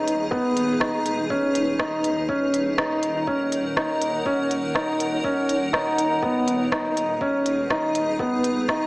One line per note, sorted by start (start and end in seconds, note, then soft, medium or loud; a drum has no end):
0.00 2.26 D#1 medium
0.00 0.23 D#4 medium
0.00 6.18 D#4 medium
0.00 2.25 G#4 medium
0.00 2.25 B4 medium
0.08 closed hi-hat medium
0.31 0.72 B3 loud
0.31 kick loud
0.57 closed hi-hat medium
0.80 1.21 D#4 medium
0.80 kick loud
0.80 cross-stick medium
1.06 closed hi-hat medium
1.30 1.71 C#4 medium
1.30 kick loud
1.55 closed hi-hat medium
1.79 2.20 D#4 medium
1.79 kick loud
1.79 cross-stick medium
2.04 closed hi-hat medium
2.29 6.20 D#1 medium
2.29 2.69 C#4 medium
2.29 6.19 A#4 medium
2.29 6.19 C#5 medium
2.29 6.19 F#5 medium
2.29 kick loud
2.54 closed hi-hat medium
2.78 3.18 D#4 medium
2.78 kick loud
2.78 cross-stick loud
3.03 closed hi-hat medium
3.27 3.68 C#4 medium
3.27 kick loud
3.52 closed hi-hat medium
3.77 4.17 D#4 medium
3.77 kick loud
3.77 cross-stick medium
4.02 closed hi-hat medium
4.26 4.66 C#4 medium
4.26 kick loud
4.51 closed hi-hat medium
4.75 5.15 D#4 medium
4.75 kick loud
4.75 cross-stick medium
5.00 closed hi-hat medium
5.24 5.65 C#4 medium
5.24 kick loud
5.49 closed hi-hat medium
5.73 6.14 D#4 medium
5.73 kick loud
5.73 cross-stick medium
5.98 closed hi-hat medium
6.22 8.87 D#1 medium
6.22 6.63 B3 loud
6.22 8.87 D#4 medium
6.22 8.87 G#4 medium
6.22 8.87 B4 medium
6.22 kick loud
6.48 closed hi-hat medium
6.72 7.12 D#4 medium
6.72 kick loud
6.72 cross-stick loud
6.97 closed hi-hat medium
7.21 7.62 C#4 medium
7.21 kick loud
7.46 closed hi-hat medium
7.70 8.11 D#4 medium
7.70 kick loud
7.70 cross-stick medium
7.95 closed hi-hat medium
8.19 8.60 B3 medium
8.19 kick loud
8.44 closed hi-hat medium
8.68 8.87 D#4 medium
8.68 kick loud
8.68 cross-stick medium